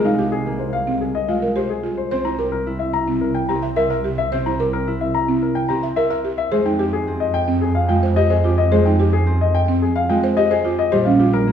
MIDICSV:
0, 0, Header, 1, 5, 480
1, 0, Start_track
1, 0, Tempo, 550459
1, 1843, Time_signature, 4, 2, 24, 8
1, 10045, End_track
2, 0, Start_track
2, 0, Title_t, "Grand piano"
2, 0, Program_c, 0, 0
2, 43, Note_on_c, 0, 77, 54
2, 162, Note_on_c, 0, 67, 53
2, 199, Note_off_c, 0, 77, 0
2, 277, Note_on_c, 0, 68, 64
2, 319, Note_off_c, 0, 67, 0
2, 437, Note_off_c, 0, 68, 0
2, 514, Note_on_c, 0, 72, 48
2, 635, Note_on_c, 0, 77, 64
2, 676, Note_off_c, 0, 72, 0
2, 796, Note_off_c, 0, 77, 0
2, 880, Note_on_c, 0, 68, 47
2, 1001, Note_on_c, 0, 75, 59
2, 1038, Note_off_c, 0, 68, 0
2, 1120, Note_on_c, 0, 77, 48
2, 1159, Note_off_c, 0, 75, 0
2, 1278, Note_off_c, 0, 77, 0
2, 1359, Note_on_c, 0, 72, 62
2, 1482, Note_on_c, 0, 68, 48
2, 1518, Note_off_c, 0, 72, 0
2, 1639, Note_off_c, 0, 68, 0
2, 1721, Note_on_c, 0, 72, 58
2, 1828, Note_off_c, 0, 72, 0
2, 1841, Note_on_c, 0, 72, 65
2, 1960, Note_on_c, 0, 82, 54
2, 1999, Note_off_c, 0, 72, 0
2, 2078, Note_on_c, 0, 67, 54
2, 2118, Note_off_c, 0, 82, 0
2, 2197, Note_on_c, 0, 70, 64
2, 2238, Note_off_c, 0, 67, 0
2, 2357, Note_off_c, 0, 70, 0
2, 2435, Note_on_c, 0, 76, 53
2, 2559, Note_on_c, 0, 82, 66
2, 2596, Note_off_c, 0, 76, 0
2, 2718, Note_off_c, 0, 82, 0
2, 2801, Note_on_c, 0, 70, 53
2, 2918, Note_on_c, 0, 79, 61
2, 2958, Note_off_c, 0, 70, 0
2, 3040, Note_on_c, 0, 82, 54
2, 3077, Note_off_c, 0, 79, 0
2, 3198, Note_off_c, 0, 82, 0
2, 3283, Note_on_c, 0, 76, 71
2, 3400, Note_on_c, 0, 70, 56
2, 3439, Note_off_c, 0, 76, 0
2, 3558, Note_off_c, 0, 70, 0
2, 3645, Note_on_c, 0, 76, 69
2, 3770, Note_on_c, 0, 72, 68
2, 3800, Note_off_c, 0, 76, 0
2, 3889, Note_on_c, 0, 82, 51
2, 3921, Note_off_c, 0, 72, 0
2, 4014, Note_on_c, 0, 67, 54
2, 4041, Note_off_c, 0, 82, 0
2, 4127, Note_on_c, 0, 70, 70
2, 4163, Note_off_c, 0, 67, 0
2, 4280, Note_off_c, 0, 70, 0
2, 4367, Note_on_c, 0, 76, 54
2, 4487, Note_on_c, 0, 82, 67
2, 4521, Note_off_c, 0, 76, 0
2, 4641, Note_off_c, 0, 82, 0
2, 4730, Note_on_c, 0, 70, 53
2, 4841, Note_on_c, 0, 79, 69
2, 4882, Note_off_c, 0, 70, 0
2, 4958, Note_on_c, 0, 82, 58
2, 4999, Note_off_c, 0, 79, 0
2, 5117, Note_off_c, 0, 82, 0
2, 5199, Note_on_c, 0, 76, 74
2, 5318, Note_on_c, 0, 70, 57
2, 5358, Note_off_c, 0, 76, 0
2, 5478, Note_off_c, 0, 70, 0
2, 5562, Note_on_c, 0, 76, 67
2, 5682, Note_on_c, 0, 72, 68
2, 5719, Note_off_c, 0, 76, 0
2, 5805, Note_on_c, 0, 79, 57
2, 5839, Note_off_c, 0, 72, 0
2, 5920, Note_on_c, 0, 67, 57
2, 5960, Note_off_c, 0, 79, 0
2, 6042, Note_on_c, 0, 68, 70
2, 6078, Note_off_c, 0, 67, 0
2, 6199, Note_off_c, 0, 68, 0
2, 6280, Note_on_c, 0, 75, 59
2, 6400, Note_on_c, 0, 79, 75
2, 6438, Note_off_c, 0, 75, 0
2, 6558, Note_off_c, 0, 79, 0
2, 6640, Note_on_c, 0, 68, 57
2, 6757, Note_on_c, 0, 77, 67
2, 6798, Note_off_c, 0, 68, 0
2, 6877, Note_on_c, 0, 79, 62
2, 6917, Note_off_c, 0, 77, 0
2, 7037, Note_off_c, 0, 79, 0
2, 7117, Note_on_c, 0, 75, 80
2, 7243, Note_on_c, 0, 68, 57
2, 7277, Note_off_c, 0, 75, 0
2, 7367, Note_on_c, 0, 67, 62
2, 7399, Note_off_c, 0, 68, 0
2, 7480, Note_on_c, 0, 75, 69
2, 7520, Note_off_c, 0, 67, 0
2, 7601, Note_on_c, 0, 72, 72
2, 7638, Note_off_c, 0, 75, 0
2, 7720, Note_on_c, 0, 79, 56
2, 7758, Note_off_c, 0, 72, 0
2, 7841, Note_on_c, 0, 67, 59
2, 7878, Note_off_c, 0, 79, 0
2, 7960, Note_on_c, 0, 68, 74
2, 7999, Note_off_c, 0, 67, 0
2, 8118, Note_off_c, 0, 68, 0
2, 8208, Note_on_c, 0, 75, 61
2, 8324, Note_on_c, 0, 79, 73
2, 8361, Note_off_c, 0, 75, 0
2, 8479, Note_off_c, 0, 79, 0
2, 8564, Note_on_c, 0, 68, 61
2, 8682, Note_on_c, 0, 77, 73
2, 8720, Note_off_c, 0, 68, 0
2, 8802, Note_on_c, 0, 79, 64
2, 8839, Note_off_c, 0, 77, 0
2, 8959, Note_off_c, 0, 79, 0
2, 9040, Note_on_c, 0, 75, 82
2, 9162, Note_on_c, 0, 68, 65
2, 9198, Note_off_c, 0, 75, 0
2, 9286, Note_on_c, 0, 67, 62
2, 9319, Note_off_c, 0, 68, 0
2, 9407, Note_on_c, 0, 75, 75
2, 9440, Note_off_c, 0, 67, 0
2, 9520, Note_on_c, 0, 72, 77
2, 9560, Note_off_c, 0, 75, 0
2, 9636, Note_on_c, 0, 77, 59
2, 9678, Note_off_c, 0, 72, 0
2, 9759, Note_on_c, 0, 67, 64
2, 9797, Note_off_c, 0, 77, 0
2, 9884, Note_on_c, 0, 70, 78
2, 9918, Note_off_c, 0, 67, 0
2, 10040, Note_off_c, 0, 70, 0
2, 10045, End_track
3, 0, Start_track
3, 0, Title_t, "Marimba"
3, 0, Program_c, 1, 12
3, 41, Note_on_c, 1, 63, 58
3, 163, Note_on_c, 1, 67, 55
3, 198, Note_off_c, 1, 63, 0
3, 319, Note_off_c, 1, 67, 0
3, 761, Note_on_c, 1, 60, 52
3, 919, Note_off_c, 1, 60, 0
3, 1121, Note_on_c, 1, 65, 47
3, 1241, Note_on_c, 1, 70, 50
3, 1279, Note_off_c, 1, 65, 0
3, 1358, Note_on_c, 1, 67, 60
3, 1398, Note_off_c, 1, 70, 0
3, 1517, Note_off_c, 1, 67, 0
3, 1600, Note_on_c, 1, 65, 45
3, 1758, Note_off_c, 1, 65, 0
3, 1843, Note_on_c, 1, 72, 68
3, 1962, Note_on_c, 1, 64, 54
3, 1999, Note_off_c, 1, 72, 0
3, 2082, Note_on_c, 1, 70, 55
3, 2119, Note_off_c, 1, 64, 0
3, 2239, Note_off_c, 1, 70, 0
3, 2682, Note_on_c, 1, 60, 56
3, 2839, Note_off_c, 1, 60, 0
3, 3045, Note_on_c, 1, 67, 55
3, 3161, Note_on_c, 1, 76, 56
3, 3200, Note_off_c, 1, 67, 0
3, 3282, Note_on_c, 1, 70, 66
3, 3319, Note_off_c, 1, 76, 0
3, 3405, Note_on_c, 1, 76, 57
3, 3439, Note_off_c, 1, 70, 0
3, 3526, Note_on_c, 1, 67, 53
3, 3560, Note_off_c, 1, 76, 0
3, 3680, Note_off_c, 1, 67, 0
3, 3768, Note_on_c, 1, 72, 67
3, 3892, Note_on_c, 1, 64, 57
3, 3921, Note_off_c, 1, 72, 0
3, 4009, Note_on_c, 1, 70, 59
3, 4043, Note_off_c, 1, 64, 0
3, 4161, Note_off_c, 1, 70, 0
3, 4608, Note_on_c, 1, 60, 55
3, 4761, Note_off_c, 1, 60, 0
3, 4967, Note_on_c, 1, 67, 54
3, 5085, Note_on_c, 1, 76, 61
3, 5121, Note_off_c, 1, 67, 0
3, 5206, Note_on_c, 1, 70, 69
3, 5240, Note_off_c, 1, 76, 0
3, 5324, Note_on_c, 1, 76, 58
3, 5360, Note_off_c, 1, 70, 0
3, 5445, Note_on_c, 1, 67, 52
3, 5479, Note_off_c, 1, 76, 0
3, 5600, Note_off_c, 1, 67, 0
3, 5683, Note_on_c, 1, 68, 71
3, 5804, Note_on_c, 1, 63, 54
3, 5839, Note_off_c, 1, 68, 0
3, 5924, Note_on_c, 1, 67, 61
3, 5960, Note_off_c, 1, 63, 0
3, 6079, Note_off_c, 1, 67, 0
3, 6521, Note_on_c, 1, 60, 60
3, 6679, Note_off_c, 1, 60, 0
3, 6881, Note_on_c, 1, 65, 57
3, 7003, Note_on_c, 1, 72, 62
3, 7038, Note_off_c, 1, 65, 0
3, 7122, Note_on_c, 1, 67, 69
3, 7159, Note_off_c, 1, 72, 0
3, 7240, Note_on_c, 1, 72, 59
3, 7279, Note_off_c, 1, 67, 0
3, 7361, Note_on_c, 1, 65, 59
3, 7398, Note_off_c, 1, 72, 0
3, 7518, Note_off_c, 1, 65, 0
3, 7602, Note_on_c, 1, 68, 75
3, 7725, Note_on_c, 1, 63, 56
3, 7759, Note_off_c, 1, 68, 0
3, 7845, Note_on_c, 1, 67, 66
3, 7880, Note_off_c, 1, 63, 0
3, 8000, Note_off_c, 1, 67, 0
3, 8444, Note_on_c, 1, 60, 65
3, 8600, Note_off_c, 1, 60, 0
3, 8804, Note_on_c, 1, 65, 59
3, 8925, Note_on_c, 1, 72, 68
3, 8959, Note_off_c, 1, 65, 0
3, 9046, Note_on_c, 1, 67, 72
3, 9080, Note_off_c, 1, 72, 0
3, 9166, Note_on_c, 1, 72, 65
3, 9200, Note_off_c, 1, 67, 0
3, 9283, Note_on_c, 1, 65, 62
3, 9320, Note_off_c, 1, 72, 0
3, 9439, Note_off_c, 1, 65, 0
3, 9523, Note_on_c, 1, 67, 79
3, 9647, Note_on_c, 1, 61, 63
3, 9679, Note_off_c, 1, 67, 0
3, 9765, Note_on_c, 1, 65, 65
3, 9800, Note_off_c, 1, 61, 0
3, 9920, Note_off_c, 1, 65, 0
3, 10045, End_track
4, 0, Start_track
4, 0, Title_t, "Harp"
4, 0, Program_c, 2, 46
4, 0, Note_on_c, 2, 56, 67
4, 0, Note_on_c, 2, 58, 64
4, 392, Note_off_c, 2, 58, 0
4, 402, Note_on_c, 2, 58, 52
4, 1108, Note_off_c, 2, 56, 0
4, 1119, Note_on_c, 2, 56, 55
4, 1844, Note_on_c, 2, 60, 69
4, 1860, Note_off_c, 2, 56, 0
4, 2324, Note_on_c, 2, 64, 53
4, 3038, Note_off_c, 2, 60, 0
4, 3049, Note_on_c, 2, 60, 57
4, 3757, Note_off_c, 2, 60, 0
4, 3767, Note_on_c, 2, 60, 65
4, 3803, Note_off_c, 2, 58, 0
4, 4239, Note_off_c, 2, 64, 0
4, 4249, Note_on_c, 2, 64, 56
4, 4958, Note_off_c, 2, 60, 0
4, 4968, Note_on_c, 2, 60, 54
4, 5684, Note_on_c, 2, 56, 69
4, 5705, Note_off_c, 2, 64, 0
4, 6158, Note_off_c, 2, 60, 0
4, 6168, Note_on_c, 2, 60, 56
4, 6872, Note_off_c, 2, 56, 0
4, 6883, Note_on_c, 2, 56, 61
4, 7592, Note_off_c, 2, 56, 0
4, 7602, Note_on_c, 2, 56, 71
4, 8069, Note_off_c, 2, 60, 0
4, 8079, Note_on_c, 2, 60, 65
4, 8792, Note_off_c, 2, 56, 0
4, 8802, Note_on_c, 2, 56, 66
4, 9525, Note_on_c, 2, 55, 78
4, 9542, Note_off_c, 2, 56, 0
4, 10003, Note_on_c, 2, 58, 66
4, 10045, Note_off_c, 2, 55, 0
4, 10045, Note_off_c, 2, 58, 0
4, 10045, Note_off_c, 2, 60, 0
4, 10045, End_track
5, 0, Start_track
5, 0, Title_t, "Double bass section"
5, 0, Program_c, 3, 48
5, 0, Note_on_c, 3, 36, 71
5, 1711, Note_off_c, 3, 36, 0
5, 1842, Note_on_c, 3, 36, 58
5, 5552, Note_off_c, 3, 36, 0
5, 5678, Note_on_c, 3, 41, 61
5, 9390, Note_off_c, 3, 41, 0
5, 9518, Note_on_c, 3, 34, 71
5, 10045, Note_off_c, 3, 34, 0
5, 10045, End_track
0, 0, End_of_file